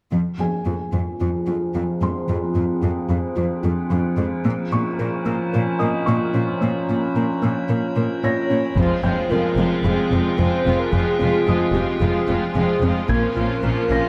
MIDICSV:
0, 0, Header, 1, 10, 480
1, 0, Start_track
1, 0, Key_signature, -4, "minor"
1, 0, Tempo, 540541
1, 107, Time_signature, 4, 2, 24, 8
1, 12510, End_track
2, 0, Start_track
2, 0, Title_t, "Felt piano"
2, 0, Program_c, 0, 0
2, 286, Control_c, 0, 64, 127
2, 355, Note_on_c, 0, 68, 18
2, 356, Note_on_c, 0, 80, 22
2, 1755, Note_off_c, 0, 68, 0
2, 1756, Note_off_c, 0, 80, 0
2, 1800, Note_on_c, 0, 84, 22
2, 3198, Note_off_c, 0, 84, 0
2, 3961, Control_c, 0, 64, 0
2, 4113, Control_c, 0, 64, 127
2, 4195, Note_on_c, 0, 85, 43
2, 5140, Note_on_c, 0, 75, 28
2, 5142, Note_on_c, 0, 87, 31
2, 5369, Note_off_c, 0, 85, 0
2, 5382, Note_on_c, 0, 85, 44
2, 6548, Note_off_c, 0, 75, 0
2, 6549, Note_off_c, 0, 87, 0
2, 6789, Note_off_c, 0, 85, 0
2, 7319, Note_on_c, 0, 94, 28
2, 7760, Note_off_c, 0, 94, 0
2, 7804, Control_c, 0, 64, 0
2, 7932, Control_c, 0, 64, 127
2, 8021, Note_on_c, 0, 79, 23
2, 8022, Note_on_c, 0, 91, 25
2, 9428, Note_off_c, 0, 79, 0
2, 9429, Note_off_c, 0, 91, 0
2, 10193, Note_on_c, 0, 75, 27
2, 10199, Note_on_c, 0, 87, 35
2, 11594, Note_off_c, 0, 75, 0
2, 11597, Note_off_c, 0, 87, 0
2, 11627, Note_on_c, 0, 92, 45
2, 11642, Control_c, 0, 64, 0
2, 11796, Control_c, 0, 64, 127
2, 12359, Note_on_c, 0, 94, 38
2, 12510, Note_off_c, 0, 92, 0
2, 12510, Note_off_c, 0, 94, 0
2, 12510, End_track
3, 0, Start_track
3, 0, Title_t, "Soft synth lead"
3, 0, Program_c, 1, 80
3, 7310, Note_on_c, 1, 73, 72
3, 7803, Note_on_c, 1, 72, 76
3, 7816, Note_off_c, 1, 73, 0
3, 8264, Note_on_c, 1, 70, 77
3, 8277, Note_off_c, 1, 72, 0
3, 8736, Note_off_c, 1, 70, 0
3, 8741, Note_on_c, 1, 68, 72
3, 9218, Note_on_c, 1, 72, 76
3, 9231, Note_off_c, 1, 68, 0
3, 9582, Note_off_c, 1, 72, 0
3, 9587, Note_on_c, 1, 70, 66
3, 9698, Note_on_c, 1, 68, 76
3, 9712, Note_off_c, 1, 70, 0
3, 10410, Note_off_c, 1, 68, 0
3, 10415, Note_on_c, 1, 67, 66
3, 10658, Note_on_c, 1, 68, 73
3, 10671, Note_off_c, 1, 67, 0
3, 11124, Note_off_c, 1, 68, 0
3, 11129, Note_on_c, 1, 68, 77
3, 11622, Note_on_c, 1, 70, 87
3, 11635, Note_off_c, 1, 68, 0
3, 12510, Note_off_c, 1, 70, 0
3, 12510, End_track
4, 0, Start_track
4, 0, Title_t, "Synth drone"
4, 0, Program_c, 2, 95
4, 119, Note_on_c, 2, 60, 53
4, 119, Note_on_c, 2, 65, 51
4, 121, Note_on_c, 2, 53, 55
4, 121, Note_on_c, 2, 68, 53
4, 3917, Note_off_c, 2, 60, 0
4, 3917, Note_off_c, 2, 65, 0
4, 3918, Note_off_c, 2, 53, 0
4, 3918, Note_off_c, 2, 68, 0
4, 3942, Note_on_c, 2, 53, 60
4, 3943, Note_on_c, 2, 70, 57
4, 3945, Note_on_c, 2, 65, 58
4, 3947, Note_on_c, 2, 61, 59
4, 7748, Note_off_c, 2, 53, 0
4, 7750, Note_off_c, 2, 65, 0
4, 7775, Note_on_c, 2, 60, 58
4, 7776, Note_on_c, 2, 53, 60
4, 7778, Note_on_c, 2, 65, 54
4, 7779, Note_on_c, 2, 68, 61
4, 7785, Note_off_c, 2, 70, 0
4, 7787, Note_off_c, 2, 61, 0
4, 11585, Note_off_c, 2, 60, 0
4, 11586, Note_off_c, 2, 53, 0
4, 11587, Note_off_c, 2, 65, 0
4, 11587, Note_off_c, 2, 68, 0
4, 11618, Note_on_c, 2, 70, 61
4, 11621, Note_on_c, 2, 53, 62
4, 11622, Note_on_c, 2, 61, 61
4, 11622, Note_on_c, 2, 65, 59
4, 12510, Note_off_c, 2, 53, 0
4, 12510, Note_off_c, 2, 61, 0
4, 12510, Note_off_c, 2, 65, 0
4, 12510, Note_off_c, 2, 70, 0
4, 12510, End_track
5, 0, Start_track
5, 0, Title_t, "Violin section"
5, 0, Program_c, 3, 48
5, 7796, Note_on_c, 3, 65, 36
5, 7798, Note_on_c, 3, 60, 35
5, 8019, Note_off_c, 3, 65, 0
5, 8023, Note_off_c, 3, 60, 0
5, 8029, Note_on_c, 3, 65, 32
5, 8033, Note_on_c, 3, 60, 35
5, 8249, Note_off_c, 3, 60, 0
5, 8251, Note_off_c, 3, 65, 0
5, 8260, Note_on_c, 3, 60, 33
5, 8262, Note_on_c, 3, 65, 33
5, 8498, Note_off_c, 3, 60, 0
5, 8499, Note_off_c, 3, 65, 0
5, 8507, Note_on_c, 3, 60, 36
5, 8509, Note_on_c, 3, 65, 34
5, 8737, Note_off_c, 3, 60, 0
5, 8739, Note_off_c, 3, 65, 0
5, 8748, Note_on_c, 3, 60, 35
5, 8750, Note_on_c, 3, 65, 34
5, 8982, Note_off_c, 3, 60, 0
5, 8983, Note_off_c, 3, 65, 0
5, 8999, Note_on_c, 3, 60, 33
5, 9001, Note_on_c, 3, 65, 34
5, 9228, Note_off_c, 3, 60, 0
5, 9229, Note_off_c, 3, 65, 0
5, 9240, Note_on_c, 3, 65, 39
5, 9241, Note_on_c, 3, 60, 37
5, 9461, Note_off_c, 3, 65, 0
5, 9464, Note_off_c, 3, 60, 0
5, 9472, Note_on_c, 3, 65, 39
5, 9475, Note_on_c, 3, 60, 36
5, 9704, Note_off_c, 3, 65, 0
5, 9706, Note_off_c, 3, 60, 0
5, 9714, Note_on_c, 3, 65, 39
5, 9718, Note_on_c, 3, 60, 37
5, 9940, Note_off_c, 3, 65, 0
5, 9944, Note_off_c, 3, 60, 0
5, 9951, Note_on_c, 3, 65, 37
5, 9955, Note_on_c, 3, 60, 35
5, 10179, Note_off_c, 3, 60, 0
5, 10184, Note_off_c, 3, 65, 0
5, 10190, Note_on_c, 3, 60, 36
5, 10195, Note_on_c, 3, 65, 36
5, 10423, Note_off_c, 3, 60, 0
5, 10423, Note_off_c, 3, 65, 0
5, 10434, Note_on_c, 3, 65, 38
5, 10439, Note_on_c, 3, 60, 38
5, 10661, Note_off_c, 3, 65, 0
5, 10664, Note_off_c, 3, 60, 0
5, 10672, Note_on_c, 3, 65, 38
5, 10674, Note_on_c, 3, 60, 37
5, 10893, Note_off_c, 3, 65, 0
5, 10901, Note_off_c, 3, 60, 0
5, 10904, Note_on_c, 3, 65, 38
5, 10911, Note_on_c, 3, 60, 36
5, 11140, Note_off_c, 3, 65, 0
5, 11144, Note_off_c, 3, 60, 0
5, 11154, Note_on_c, 3, 60, 41
5, 11156, Note_on_c, 3, 65, 40
5, 11385, Note_off_c, 3, 60, 0
5, 11387, Note_off_c, 3, 65, 0
5, 11397, Note_on_c, 3, 60, 40
5, 11401, Note_on_c, 3, 65, 41
5, 11624, Note_off_c, 3, 65, 0
5, 11627, Note_off_c, 3, 60, 0
5, 11633, Note_on_c, 3, 61, 44
5, 11635, Note_on_c, 3, 65, 44
5, 11865, Note_off_c, 3, 61, 0
5, 11866, Note_off_c, 3, 65, 0
5, 11874, Note_on_c, 3, 61, 40
5, 11877, Note_on_c, 3, 65, 39
5, 12105, Note_off_c, 3, 61, 0
5, 12105, Note_off_c, 3, 65, 0
5, 12115, Note_on_c, 3, 65, 38
5, 12120, Note_on_c, 3, 61, 37
5, 12346, Note_off_c, 3, 65, 0
5, 12348, Note_off_c, 3, 61, 0
5, 12356, Note_on_c, 3, 65, 39
5, 12358, Note_on_c, 3, 61, 41
5, 12510, Note_off_c, 3, 61, 0
5, 12510, Note_off_c, 3, 65, 0
5, 12510, End_track
6, 0, Start_track
6, 0, Title_t, "Synth arpeggio sound"
6, 0, Program_c, 4, 84
6, 110, Note_on_c, 4, 53, 59
6, 253, Note_off_c, 4, 53, 0
6, 591, Note_on_c, 4, 65, 44
6, 734, Note_off_c, 4, 65, 0
6, 836, Note_on_c, 4, 53, 60
6, 977, Note_off_c, 4, 53, 0
6, 1075, Note_on_c, 4, 65, 43
6, 1216, Note_off_c, 4, 65, 0
6, 1314, Note_on_c, 4, 65, 46
6, 1456, Note_off_c, 4, 65, 0
6, 1560, Note_on_c, 4, 53, 65
6, 1700, Note_off_c, 4, 53, 0
6, 1785, Note_on_c, 4, 56, 45
6, 1930, Note_off_c, 4, 56, 0
6, 2022, Note_on_c, 4, 53, 62
6, 2168, Note_off_c, 4, 53, 0
6, 2503, Note_on_c, 4, 65, 44
6, 2648, Note_off_c, 4, 65, 0
6, 2746, Note_on_c, 4, 53, 67
6, 2890, Note_off_c, 4, 53, 0
6, 2986, Note_on_c, 4, 65, 46
6, 3130, Note_off_c, 4, 65, 0
6, 3223, Note_on_c, 4, 65, 47
6, 3368, Note_off_c, 4, 65, 0
6, 3466, Note_on_c, 4, 53, 65
6, 3610, Note_off_c, 4, 53, 0
6, 3712, Note_on_c, 4, 56, 49
6, 3854, Note_off_c, 4, 56, 0
6, 3953, Note_on_c, 4, 58, 69
6, 4095, Note_off_c, 4, 58, 0
6, 4433, Note_on_c, 4, 70, 46
6, 4575, Note_off_c, 4, 70, 0
6, 4668, Note_on_c, 4, 58, 67
6, 4812, Note_off_c, 4, 58, 0
6, 4913, Note_on_c, 4, 70, 49
6, 5055, Note_off_c, 4, 70, 0
6, 5148, Note_on_c, 4, 70, 53
6, 5291, Note_off_c, 4, 70, 0
6, 5392, Note_on_c, 4, 58, 64
6, 5535, Note_off_c, 4, 58, 0
6, 5630, Note_on_c, 4, 61, 48
6, 5773, Note_off_c, 4, 61, 0
6, 5873, Note_on_c, 4, 58, 66
6, 6015, Note_off_c, 4, 58, 0
6, 6362, Note_on_c, 4, 70, 48
6, 6501, Note_off_c, 4, 70, 0
6, 6593, Note_on_c, 4, 58, 69
6, 6735, Note_off_c, 4, 58, 0
6, 6837, Note_on_c, 4, 70, 45
6, 6978, Note_off_c, 4, 70, 0
6, 7079, Note_on_c, 4, 70, 47
6, 7219, Note_off_c, 4, 70, 0
6, 7316, Note_on_c, 4, 58, 64
6, 7457, Note_off_c, 4, 58, 0
6, 7547, Note_on_c, 4, 61, 47
6, 7691, Note_off_c, 4, 61, 0
6, 7786, Note_on_c, 4, 53, 66
6, 7930, Note_off_c, 4, 53, 0
6, 8025, Note_on_c, 4, 60, 50
6, 8169, Note_off_c, 4, 60, 0
6, 8259, Note_on_c, 4, 65, 46
6, 8405, Note_off_c, 4, 65, 0
6, 8505, Note_on_c, 4, 56, 48
6, 8649, Note_off_c, 4, 56, 0
6, 8741, Note_on_c, 4, 53, 68
6, 8887, Note_off_c, 4, 53, 0
6, 8985, Note_on_c, 4, 60, 52
6, 9129, Note_off_c, 4, 60, 0
6, 9466, Note_on_c, 4, 60, 52
6, 9610, Note_off_c, 4, 60, 0
6, 9697, Note_on_c, 4, 53, 69
6, 9844, Note_off_c, 4, 53, 0
6, 9937, Note_on_c, 4, 60, 52
6, 10084, Note_off_c, 4, 60, 0
6, 10182, Note_on_c, 4, 65, 49
6, 10327, Note_off_c, 4, 65, 0
6, 10432, Note_on_c, 4, 56, 49
6, 10574, Note_off_c, 4, 56, 0
6, 10671, Note_on_c, 4, 53, 71
6, 10813, Note_off_c, 4, 53, 0
6, 10913, Note_on_c, 4, 60, 51
6, 11055, Note_off_c, 4, 60, 0
6, 11393, Note_on_c, 4, 60, 50
6, 11535, Note_off_c, 4, 60, 0
6, 11634, Note_on_c, 4, 58, 71
6, 11776, Note_off_c, 4, 58, 0
6, 11871, Note_on_c, 4, 65, 50
6, 12014, Note_off_c, 4, 65, 0
6, 12111, Note_on_c, 4, 70, 51
6, 12254, Note_off_c, 4, 70, 0
6, 12355, Note_on_c, 4, 61, 51
6, 12497, Note_off_c, 4, 61, 0
6, 12510, End_track
7, 0, Start_track
7, 0, Title_t, "Viola section"
7, 0, Program_c, 5, 48
7, 7787, Note_on_c, 5, 53, 37
7, 7787, Note_on_c, 5, 56, 36
7, 8014, Note_off_c, 5, 56, 0
7, 8022, Note_off_c, 5, 53, 0
7, 8025, Note_on_c, 5, 56, 34
7, 8032, Note_on_c, 5, 53, 32
7, 8261, Note_off_c, 5, 53, 0
7, 8261, Note_off_c, 5, 56, 0
7, 8271, Note_on_c, 5, 53, 36
7, 8273, Note_on_c, 5, 56, 36
7, 8502, Note_off_c, 5, 56, 0
7, 8504, Note_off_c, 5, 53, 0
7, 8512, Note_on_c, 5, 56, 30
7, 8514, Note_on_c, 5, 53, 31
7, 8745, Note_off_c, 5, 53, 0
7, 8745, Note_off_c, 5, 56, 0
7, 8757, Note_on_c, 5, 56, 40
7, 8760, Note_on_c, 5, 53, 37
7, 8987, Note_off_c, 5, 56, 0
7, 8988, Note_off_c, 5, 53, 0
7, 8999, Note_on_c, 5, 53, 35
7, 9004, Note_on_c, 5, 56, 32
7, 9225, Note_off_c, 5, 53, 0
7, 9225, Note_off_c, 5, 56, 0
7, 9235, Note_on_c, 5, 53, 33
7, 9235, Note_on_c, 5, 56, 31
7, 9466, Note_off_c, 5, 53, 0
7, 9466, Note_off_c, 5, 56, 0
7, 9476, Note_on_c, 5, 53, 34
7, 9476, Note_on_c, 5, 56, 32
7, 9706, Note_off_c, 5, 53, 0
7, 9707, Note_off_c, 5, 56, 0
7, 9717, Note_on_c, 5, 53, 38
7, 9721, Note_on_c, 5, 56, 38
7, 9941, Note_off_c, 5, 56, 0
7, 9943, Note_off_c, 5, 53, 0
7, 9951, Note_on_c, 5, 56, 33
7, 9953, Note_on_c, 5, 53, 34
7, 10174, Note_off_c, 5, 56, 0
7, 10177, Note_off_c, 5, 53, 0
7, 10185, Note_on_c, 5, 56, 39
7, 10187, Note_on_c, 5, 53, 39
7, 10416, Note_off_c, 5, 53, 0
7, 10416, Note_off_c, 5, 56, 0
7, 10426, Note_on_c, 5, 56, 33
7, 10427, Note_on_c, 5, 53, 38
7, 10649, Note_off_c, 5, 53, 0
7, 10649, Note_off_c, 5, 56, 0
7, 10660, Note_on_c, 5, 53, 41
7, 10660, Note_on_c, 5, 56, 41
7, 10887, Note_off_c, 5, 53, 0
7, 10893, Note_off_c, 5, 56, 0
7, 10897, Note_on_c, 5, 53, 38
7, 10904, Note_on_c, 5, 56, 36
7, 11128, Note_off_c, 5, 56, 0
7, 11129, Note_off_c, 5, 53, 0
7, 11138, Note_on_c, 5, 56, 34
7, 11139, Note_on_c, 5, 53, 37
7, 11371, Note_off_c, 5, 56, 0
7, 11373, Note_off_c, 5, 53, 0
7, 11382, Note_on_c, 5, 56, 37
7, 11383, Note_on_c, 5, 53, 40
7, 11612, Note_off_c, 5, 53, 0
7, 11619, Note_off_c, 5, 56, 0
7, 11623, Note_on_c, 5, 53, 41
7, 11624, Note_on_c, 5, 58, 41
7, 11845, Note_off_c, 5, 53, 0
7, 11847, Note_off_c, 5, 58, 0
7, 11856, Note_on_c, 5, 53, 38
7, 11858, Note_on_c, 5, 58, 37
7, 12086, Note_off_c, 5, 53, 0
7, 12089, Note_off_c, 5, 58, 0
7, 12097, Note_on_c, 5, 53, 44
7, 12100, Note_on_c, 5, 58, 44
7, 12330, Note_off_c, 5, 53, 0
7, 12330, Note_off_c, 5, 58, 0
7, 12341, Note_on_c, 5, 53, 39
7, 12341, Note_on_c, 5, 58, 40
7, 12510, Note_off_c, 5, 53, 0
7, 12510, Note_off_c, 5, 58, 0
7, 12510, End_track
8, 0, Start_track
8, 0, Title_t, "Cello section"
8, 0, Program_c, 6, 48
8, 107, Note_on_c, 6, 41, 33
8, 178, Note_off_c, 6, 41, 0
8, 343, Note_on_c, 6, 41, 27
8, 414, Note_off_c, 6, 41, 0
8, 581, Note_on_c, 6, 41, 28
8, 652, Note_off_c, 6, 41, 0
8, 823, Note_on_c, 6, 41, 29
8, 894, Note_off_c, 6, 41, 0
8, 1072, Note_on_c, 6, 41, 34
8, 1143, Note_off_c, 6, 41, 0
8, 1308, Note_on_c, 6, 41, 29
8, 1379, Note_off_c, 6, 41, 0
8, 1548, Note_on_c, 6, 41, 33
8, 1619, Note_off_c, 6, 41, 0
8, 1785, Note_on_c, 6, 41, 30
8, 1856, Note_off_c, 6, 41, 0
8, 2033, Note_on_c, 6, 41, 34
8, 2104, Note_off_c, 6, 41, 0
8, 2270, Note_on_c, 6, 41, 31
8, 2341, Note_off_c, 6, 41, 0
8, 2507, Note_on_c, 6, 41, 34
8, 2578, Note_off_c, 6, 41, 0
8, 2750, Note_on_c, 6, 41, 35
8, 2821, Note_off_c, 6, 41, 0
8, 2988, Note_on_c, 6, 41, 37
8, 3059, Note_off_c, 6, 41, 0
8, 3230, Note_on_c, 6, 41, 34
8, 3301, Note_off_c, 6, 41, 0
8, 3470, Note_on_c, 6, 41, 41
8, 3541, Note_off_c, 6, 41, 0
8, 3709, Note_on_c, 6, 41, 39
8, 3780, Note_off_c, 6, 41, 0
8, 3953, Note_on_c, 6, 46, 41
8, 4024, Note_off_c, 6, 46, 0
8, 4192, Note_on_c, 6, 46, 36
8, 4263, Note_off_c, 6, 46, 0
8, 4439, Note_on_c, 6, 46, 45
8, 4510, Note_off_c, 6, 46, 0
8, 4673, Note_on_c, 6, 46, 41
8, 4744, Note_off_c, 6, 46, 0
8, 4923, Note_on_c, 6, 46, 50
8, 4994, Note_off_c, 6, 46, 0
8, 5155, Note_on_c, 6, 46, 40
8, 5226, Note_off_c, 6, 46, 0
8, 5399, Note_on_c, 6, 46, 47
8, 5470, Note_off_c, 6, 46, 0
8, 5636, Note_on_c, 6, 46, 42
8, 5708, Note_off_c, 6, 46, 0
8, 5880, Note_on_c, 6, 46, 47
8, 5951, Note_off_c, 6, 46, 0
8, 6123, Note_on_c, 6, 46, 41
8, 6194, Note_off_c, 6, 46, 0
8, 6359, Note_on_c, 6, 46, 41
8, 6430, Note_off_c, 6, 46, 0
8, 6600, Note_on_c, 6, 46, 43
8, 6671, Note_off_c, 6, 46, 0
8, 6834, Note_on_c, 6, 46, 40
8, 6905, Note_off_c, 6, 46, 0
8, 7071, Note_on_c, 6, 46, 35
8, 7142, Note_off_c, 6, 46, 0
8, 7316, Note_on_c, 6, 46, 39
8, 7387, Note_off_c, 6, 46, 0
8, 7556, Note_on_c, 6, 46, 30
8, 7627, Note_off_c, 6, 46, 0
8, 7797, Note_on_c, 6, 41, 37
8, 7868, Note_off_c, 6, 41, 0
8, 8025, Note_on_c, 6, 41, 37
8, 8096, Note_off_c, 6, 41, 0
8, 8269, Note_on_c, 6, 41, 38
8, 8340, Note_off_c, 6, 41, 0
8, 8507, Note_on_c, 6, 41, 36
8, 8578, Note_off_c, 6, 41, 0
8, 8744, Note_on_c, 6, 41, 40
8, 8815, Note_off_c, 6, 41, 0
8, 8988, Note_on_c, 6, 41, 35
8, 9059, Note_off_c, 6, 41, 0
8, 9222, Note_on_c, 6, 41, 40
8, 9293, Note_off_c, 6, 41, 0
8, 9468, Note_on_c, 6, 41, 39
8, 9539, Note_off_c, 6, 41, 0
8, 9705, Note_on_c, 6, 41, 44
8, 9776, Note_off_c, 6, 41, 0
8, 9952, Note_on_c, 6, 41, 37
8, 10023, Note_off_c, 6, 41, 0
8, 10190, Note_on_c, 6, 41, 39
8, 10261, Note_off_c, 6, 41, 0
8, 10423, Note_on_c, 6, 41, 40
8, 10494, Note_off_c, 6, 41, 0
8, 10666, Note_on_c, 6, 41, 40
8, 10737, Note_off_c, 6, 41, 0
8, 10902, Note_on_c, 6, 41, 40
8, 10973, Note_off_c, 6, 41, 0
8, 11148, Note_on_c, 6, 41, 44
8, 11219, Note_off_c, 6, 41, 0
8, 11385, Note_on_c, 6, 41, 42
8, 11457, Note_off_c, 6, 41, 0
8, 11622, Note_on_c, 6, 46, 45
8, 11693, Note_off_c, 6, 46, 0
8, 11867, Note_on_c, 6, 46, 38
8, 11938, Note_off_c, 6, 46, 0
8, 12105, Note_on_c, 6, 46, 43
8, 12176, Note_off_c, 6, 46, 0
8, 12346, Note_on_c, 6, 46, 42
8, 12417, Note_off_c, 6, 46, 0
8, 12510, End_track
9, 0, Start_track
9, 0, Title_t, "Double bass section"
9, 0, Program_c, 7, 48
9, 7785, Note_on_c, 7, 29, 41
9, 7856, Note_off_c, 7, 29, 0
9, 8031, Note_on_c, 7, 29, 35
9, 8102, Note_off_c, 7, 29, 0
9, 8268, Note_on_c, 7, 29, 39
9, 8339, Note_off_c, 7, 29, 0
9, 8502, Note_on_c, 7, 29, 38
9, 8573, Note_off_c, 7, 29, 0
9, 8741, Note_on_c, 7, 29, 38
9, 8812, Note_off_c, 7, 29, 0
9, 8986, Note_on_c, 7, 29, 41
9, 9057, Note_off_c, 7, 29, 0
9, 9228, Note_on_c, 7, 29, 36
9, 9299, Note_off_c, 7, 29, 0
9, 9472, Note_on_c, 7, 29, 36
9, 9543, Note_off_c, 7, 29, 0
9, 9713, Note_on_c, 7, 29, 47
9, 9784, Note_off_c, 7, 29, 0
9, 9953, Note_on_c, 7, 29, 37
9, 10024, Note_off_c, 7, 29, 0
9, 10186, Note_on_c, 7, 29, 40
9, 10257, Note_off_c, 7, 29, 0
9, 10421, Note_on_c, 7, 29, 40
9, 10493, Note_off_c, 7, 29, 0
9, 10666, Note_on_c, 7, 29, 45
9, 10738, Note_off_c, 7, 29, 0
9, 10910, Note_on_c, 7, 29, 40
9, 10981, Note_off_c, 7, 29, 0
9, 11154, Note_on_c, 7, 29, 38
9, 11225, Note_off_c, 7, 29, 0
9, 11393, Note_on_c, 7, 29, 41
9, 11464, Note_off_c, 7, 29, 0
9, 11631, Note_on_c, 7, 34, 49
9, 11702, Note_off_c, 7, 34, 0
9, 11866, Note_on_c, 7, 34, 43
9, 11937, Note_off_c, 7, 34, 0
9, 12102, Note_on_c, 7, 34, 45
9, 12173, Note_off_c, 7, 34, 0
9, 12345, Note_on_c, 7, 34, 47
9, 12416, Note_off_c, 7, 34, 0
9, 12510, End_track
10, 0, Start_track
10, 0, Title_t, "Taiko and cinematic ensemble drums"
10, 7777, Note_on_c, 9, 41, 38
10, 7865, Note_off_c, 9, 41, 0
10, 11625, Note_on_c, 9, 41, 45
10, 11714, Note_off_c, 9, 41, 0
10, 12510, End_track
0, 0, End_of_file